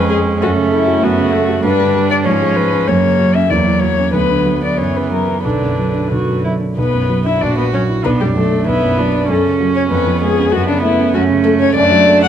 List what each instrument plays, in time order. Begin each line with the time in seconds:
Already playing: grand piano F2 F3, cello G#3, viola C#4
0.10 grand piano G#3, violin G#4
0.26 grand piano G#4
0.41 grand piano F#2, cello A3, viola C#4, violin F#4
0.56 grand piano C#3
0.71 grand piano A3, violin E4
0.87 grand piano F#4
1.02 grand piano F#2, cello A3, viola B3, violin F#4
1.18 grand piano C#3
1.33 viola A3, grand piano A3
1.49 grand piano F#4
1.63 grand piano G2, cello G3, viola D4, violin B4
1.80 grand piano D3
1.95 grand piano G3
2.10 grand piano D4, violin D5
2.24 grand piano G#2, cello F3, viola C#4, violin C#5
2.41 grand piano G#3
2.56 grand piano F3, violin B4
2.72 grand piano C#4
2.88 grand piano F#2, cello F#3, viola A#3, violin C#5
3.04 grand piano C#3
3.19 grand piano F#3
3.35 grand piano C#4, violin E5
3.50 grand piano E2, cello F#3, viola A#3, violin D5
3.67 grand piano E3
3.81 grand piano F#3, violin C#5
3.98 grand piano C#4
4.13 grand piano D2, cello F#3, viola B3, violin B4
4.30 grand piano D3
4.46 grand piano F#3
4.62 grand piano D4, violin D5
4.77 grand piano F#2, cello E3, violin C#5
4.95 grand piano C#3, violin B4
5.11 grand piano F#3, violin A#4
5.28 grand piano C#4
5.43 grand piano B1, cello D3, viola D4, violin B4
5.62 grand piano F#2
5.79 grand piano F#3
5.95 grand piano D4
6.11 grand piano B1, viola F#4
6.29 grand piano F#2
6.45 grand piano F#3, viola E4
6.61 grand piano D4
6.77 grand piano B1, viola B3, violin B4
6.93 grand piano F#2
7.10 grand piano F#3
7.25 grand piano D4, viola E4, violin E5
7.41 grand piano A#1, viola D4, cello F#4, violin D5
7.57 grand piano A#2, viola B3, violin B4
7.73 grand piano F#3, viola C#4, violin C#5
7.89 grand piano E4
8.04 grand piano B1, viola B3, cello D4, violin B4
8.20 grand piano F#2, viola G3, violin G4
8.36 grand piano F#3, viola A3, violin A4
8.52 grand piano D4
8.67 grand piano B1, viola B3, cello E4, violin B4
8.83 grand piano F#2
8.98 grand piano F#3, cello D4
9.14 grand piano D4
9.29 grand piano F#2, cello C#4, viola C#4, violin A4
9.45 grand piano C#3
9.60 grand piano F#3
9.76 grand piano C#4, violin C#5
9.91 grand piano F2, cello B3, violin B4
10.07 grand piano F3
10.22 grand piano G#3, violin G#4
10.37 grand piano C#4
10.52 grand piano F#2, viola B3, violin F#4
10.68 grand piano C#3, violin D4
10.83 grand piano A3, violin E4
10.98 grand piano C#4
11.14 grand piano F#2, viola A3, cello C#4, violin F#4
11.29 grand piano C#3
11.44 grand piano A3, violin A4
11.60 grand piano C#4, violin C#5
11.75 grand piano F#2, viola A3, cello D4, violin D5
11.92 grand piano F#3
12.07 grand piano A3
12.23 grand piano D4, violin F#5